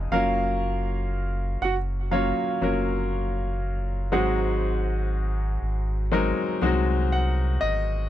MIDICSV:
0, 0, Header, 1, 4, 480
1, 0, Start_track
1, 0, Tempo, 1000000
1, 58, Time_signature, 4, 2, 24, 8
1, 3884, End_track
2, 0, Start_track
2, 0, Title_t, "Grand piano"
2, 0, Program_c, 0, 0
2, 57, Note_on_c, 0, 77, 92
2, 68, Note_on_c, 0, 65, 67
2, 764, Note_off_c, 0, 65, 0
2, 777, Note_on_c, 0, 78, 88
2, 790, Note_on_c, 0, 66, 74
2, 799, Note_off_c, 0, 77, 0
2, 831, Note_off_c, 0, 78, 0
2, 842, Note_off_c, 0, 66, 0
2, 1015, Note_on_c, 0, 77, 85
2, 1028, Note_on_c, 0, 65, 68
2, 1964, Note_off_c, 0, 65, 0
2, 1980, Note_on_c, 0, 78, 78
2, 1992, Note_on_c, 0, 66, 57
2, 2005, Note_off_c, 0, 77, 0
2, 3400, Note_off_c, 0, 78, 0
2, 3406, Note_off_c, 0, 66, 0
2, 3884, End_track
3, 0, Start_track
3, 0, Title_t, "Grand piano"
3, 0, Program_c, 1, 0
3, 0, Control_c, 1, 64, 127
3, 0, Note_on_c, 1, 49, 62
3, 0, Note_on_c, 1, 53, 66
3, 0, Note_on_c, 1, 56, 59
3, 0, Note_on_c, 1, 60, 60
3, 0, Note_on_c, 1, 63, 72
3, 0, Note_on_c, 1, 68, 72
3, 58, Note_on_c, 1, 54, 69
3, 58, Note_on_c, 1, 58, 67
3, 60, Note_on_c, 1, 61, 60
3, 63, Note_off_c, 1, 49, 0
3, 63, Note_off_c, 1, 56, 0
3, 63, Note_off_c, 1, 60, 0
3, 63, Control_c, 1, 64, 0
3, 64, Note_off_c, 1, 63, 0
3, 64, Note_off_c, 1, 68, 0
3, 64, Note_on_c, 1, 70, 79
3, 67, Note_off_c, 1, 53, 0
3, 142, Control_c, 1, 64, 127
3, 970, Note_off_c, 1, 54, 0
3, 970, Note_off_c, 1, 58, 0
3, 971, Note_off_c, 1, 61, 0
3, 973, Note_off_c, 1, 70, 0
3, 1014, Note_on_c, 1, 54, 66
3, 1015, Note_on_c, 1, 58, 64
3, 1018, Note_on_c, 1, 61, 61
3, 1019, Note_on_c, 1, 65, 64
3, 1021, Note_on_c, 1, 73, 76
3, 1244, Note_off_c, 1, 54, 0
3, 1244, Note_off_c, 1, 58, 0
3, 1246, Note_off_c, 1, 61, 0
3, 1246, Note_off_c, 1, 65, 0
3, 1247, Note_off_c, 1, 73, 0
3, 1255, Note_on_c, 1, 54, 64
3, 1258, Note_on_c, 1, 58, 59
3, 1258, Note_on_c, 1, 61, 63
3, 1261, Note_on_c, 1, 65, 61
3, 1264, Note_on_c, 1, 70, 75
3, 1940, Note_off_c, 1, 54, 0
3, 1942, Note_off_c, 1, 58, 0
3, 1942, Note_off_c, 1, 61, 0
3, 1943, Note_off_c, 1, 65, 0
3, 1945, Note_off_c, 1, 70, 0
3, 1976, Note_on_c, 1, 54, 67
3, 1977, Note_on_c, 1, 56, 64
3, 1979, Note_on_c, 1, 60, 62
3, 1980, Note_on_c, 1, 44, 61
3, 1981, Note_on_c, 1, 63, 65
3, 1983, Control_c, 1, 64, 0
3, 1983, Note_on_c, 1, 68, 78
3, 2076, Control_c, 1, 64, 127
3, 2679, Note_off_c, 1, 44, 0
3, 2889, Note_off_c, 1, 54, 0
3, 2889, Note_off_c, 1, 56, 0
3, 2890, Note_off_c, 1, 60, 0
3, 2891, Note_off_c, 1, 63, 0
3, 2892, Note_off_c, 1, 68, 0
3, 2935, Note_on_c, 1, 54, 82
3, 2935, Note_on_c, 1, 56, 67
3, 2938, Note_on_c, 1, 60, 69
3, 2941, Note_on_c, 1, 63, 76
3, 2944, Note_on_c, 1, 70, 83
3, 3164, Note_off_c, 1, 54, 0
3, 3164, Note_off_c, 1, 56, 0
3, 3166, Note_off_c, 1, 60, 0
3, 3167, Note_off_c, 1, 63, 0
3, 3169, Note_off_c, 1, 70, 0
3, 3175, Note_on_c, 1, 54, 78
3, 3176, Note_on_c, 1, 56, 70
3, 3178, Note_on_c, 1, 60, 68
3, 3180, Note_on_c, 1, 63, 68
3, 3183, Note_on_c, 1, 66, 83
3, 3419, Note_on_c, 1, 78, 73
3, 3642, Note_off_c, 1, 78, 0
3, 3651, Note_on_c, 1, 75, 83
3, 3860, Note_off_c, 1, 54, 0
3, 3861, Note_off_c, 1, 56, 0
3, 3862, Note_off_c, 1, 60, 0
3, 3863, Note_off_c, 1, 63, 0
3, 3864, Note_off_c, 1, 66, 0
3, 3882, Note_off_c, 1, 75, 0
3, 3884, End_track
4, 0, Start_track
4, 0, Title_t, "Sub bass"
4, 0, Program_c, 2, 38
4, 52, Note_on_c, 2, 30, 101
4, 756, Note_off_c, 2, 30, 0
4, 776, Note_on_c, 2, 30, 97
4, 1118, Note_off_c, 2, 30, 0
4, 1257, Note_on_c, 2, 30, 84
4, 1980, Note_on_c, 2, 32, 104
4, 1987, Note_off_c, 2, 30, 0
4, 2679, Note_off_c, 2, 32, 0
4, 2698, Note_on_c, 2, 32, 101
4, 3039, Note_off_c, 2, 32, 0
4, 3178, Note_on_c, 2, 36, 94
4, 3639, Note_off_c, 2, 36, 0
4, 3659, Note_on_c, 2, 32, 91
4, 3882, Note_off_c, 2, 32, 0
4, 3884, End_track
0, 0, End_of_file